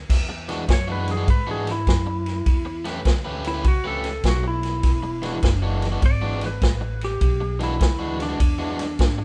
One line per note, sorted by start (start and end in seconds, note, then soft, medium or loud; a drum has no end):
0.09 0.67 E2 medium
0.09 kick medium
0.09 snare soft
0.09 crash loud
0.29 muted overdriven electric guitar stroke soft
0.49 0.62 E3 medium
0.49 0.62 G#3 medium
0.49 0.62 D4 medium
0.49 0.62 F#4 loud
0.49 snare soft
0.49 ride medium
0.68 1.26 F#2 medium
0.68 muted overdriven electric guitar stroke soft
0.68 kick medium
0.68 snare loud
0.68 ride medium
0.73 0.90 C#5 medium
0.88 1.11 E3 medium
0.88 1.11 G#3 medium
0.88 1.11 D4 medium
0.88 1.11 F#4 medium
0.92 1.09 B4 medium
1.08 1.29 G#4 medium
1.08 snare soft
1.08 ride medium
1.17 1.26 E3 medium
1.17 1.27 G#3 medium
1.17 1.27 D4 medium
1.17 1.27 F#4 medium
1.27 1.85 G#2 medium
1.27 1.48 B4 medium
1.27 muted overdriven electric guitar stroke soft
1.27 kick medium
1.27 ride medium
1.47 1.70 E3 medium
1.47 1.70 G#3 medium
1.47 1.70 D4 medium
1.47 1.70 F#4 medium
1.51 1.69 G#4 medium
1.67 snare soft
1.67 ride medium
1.71 2.84 E4 medium
1.87 2.44 F#2 medium
1.87 kick medium
1.87 snare loud
1.87 ride medium
2.06 muted overdriven electric guitar stroke soft
2.26 snare soft
2.26 ride medium
2.46 3.04 E2 medium
2.46 kick medium
2.46 ride medium
2.65 muted overdriven electric guitar stroke soft
2.85 2.98 A3 medium
2.85 2.98 C#4 medium
2.85 2.99 G4 medium
2.85 2.99 B4 loud
2.85 snare soft
2.85 ride medium
3.05 3.63 D2 medium
3.05 muted overdriven electric guitar stroke soft
3.05 kick medium
3.05 snare loud
3.05 ride medium
3.25 3.48 A3 medium
3.25 3.48 C#4 medium
3.25 3.48 G4 medium
3.25 3.48 B4 medium
3.44 3.65 E4 medium
3.44 snare soft
3.44 ride medium
3.54 3.63 A3 medium
3.54 3.64 C#4 medium
3.54 3.64 G4 medium
3.54 3.64 B4 medium
3.64 4.22 C#2 medium
3.64 3.86 F#4 loud
3.64 muted overdriven electric guitar stroke soft
3.64 kick medium
3.64 ride medium
3.84 4.08 A3 medium
3.84 4.07 C#4 medium
3.84 4.07 G4 medium
3.84 4.24 A4 medium
3.84 4.07 B4 medium
4.04 snare soft
4.04 ride medium
4.24 4.82 B1 medium
4.24 kick medium
4.24 snare loud
4.24 ride medium
4.28 4.45 F#4 medium
4.43 muted overdriven electric guitar stroke soft
4.48 5.61 E4 medium
4.63 snare soft
4.63 ride medium
4.83 5.41 E1 medium
4.83 kick medium
4.83 snare soft
4.83 ride medium
5.03 muted overdriven electric guitar stroke soft
5.22 5.36 E3 medium
5.22 5.36 G#3 medium
5.22 5.36 D4 medium
5.22 5.36 F#4 loud
5.22 snare soft
5.22 ride medium
5.43 6.01 F#1 medium
5.43 muted overdriven electric guitar stroke soft
5.43 kick medium
5.43 snare loud
5.43 ride medium
5.62 5.86 E3 medium
5.62 5.86 G#3 medium
5.62 5.85 D4 medium
5.62 5.85 F#4 medium
5.82 snare soft
5.82 ride medium
5.92 6.01 E3 medium
5.92 6.02 G#3 medium
5.92 6.02 D4 medium
5.92 6.02 F#4 medium
6.02 6.60 G#1 medium
6.02 6.42 D5 loud
6.02 muted overdriven electric guitar stroke soft
6.02 kick medium
6.02 ride medium
6.22 6.45 E3 medium
6.22 6.45 G#3 medium
6.22 6.45 D4 medium
6.22 6.44 F#4 medium
6.41 snare soft
6.41 ride medium
6.46 7.01 B4 medium
6.62 7.19 A1 medium
6.62 kick medium
6.62 snare loud
6.62 ride medium
6.81 muted overdriven electric guitar stroke medium
7.01 7.60 G4 medium
7.01 snare soft
7.01 ride medium
7.21 7.79 B1 medium
7.21 kick medium
7.21 ride medium
7.40 muted overdriven electric guitar stroke soft
7.60 7.73 E3 medium
7.60 7.73 G#3 medium
7.60 7.73 D4 medium
7.60 8.19 E4 medium
7.60 7.74 F#4 loud
7.60 snare soft
7.60 ride medium
7.80 8.38 D2 medium
7.80 muted overdriven electric guitar stroke soft
7.80 kick medium
7.80 snare loud
7.80 ride medium
7.99 8.23 E3 medium
7.99 8.23 G#3 medium
7.99 8.23 D4 medium
7.99 8.22 F#4 medium
8.20 9.25 D4 medium
8.20 snare soft
8.20 ride medium
8.29 8.38 E3 medium
8.29 8.38 G#3 medium
8.29 8.39 D4 medium
8.29 8.39 F#4 medium
8.39 8.98 E2 medium
8.39 muted overdriven electric guitar stroke soft
8.39 kick medium
8.39 ride loud
8.59 8.82 E3 medium
8.59 8.82 G#3 medium
8.59 8.82 D4 medium
8.59 8.82 F#4 medium
8.79 snare soft
8.79 ride medium
8.99 9.25 G#2 medium
8.99 kick medium
8.99 snare loud
8.99 ride medium
9.18 muted overdriven electric guitar stroke medium